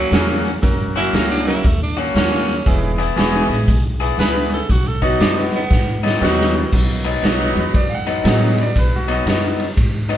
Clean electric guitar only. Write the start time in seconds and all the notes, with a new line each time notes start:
Already playing: F#3 A#3 C#4 F#4
0.12 F#3 A#3 C#4 F#4
0.96 F#3 A#3 C#4 F#4
1.14 F#3 A#3 C#4 F#4
1.97 F#3 A#3 C#4 F#4
2.15 F#3 A#3 C#4 F#4
2.98 E3 B3 E4 G#4
3.16 E3 B3 E4 G#4
4.00 E3 B3 E4 G#4
4.18 E3 B3 E4 G#4
5.02 B2 F#3 B3 D#4
5.20 B2 F#3 B3 D#4
6.03 B2 F#3 B3 D#4
6.21 B2 F#3 B3 D#4
7.05 B2 F#3 B3 D#4
7.23 B2 F#3 B3 D#4
8.07 B2 F#3 B3 D#4
8.24 B2 F#3 B3 D#4
9.08 B2 F#3 B3 D#4
9.26 B2 F#3 B3 D#4
10.09 B2 F#3 B3 D#4